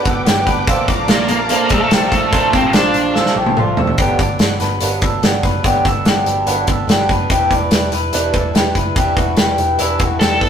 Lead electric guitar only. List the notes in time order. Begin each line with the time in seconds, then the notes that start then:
1.09 A#3
1.29 A#3
1.50 A#3
1.72 A3
2.33 A3
2.54 C4
2.74 D4
10.20 A4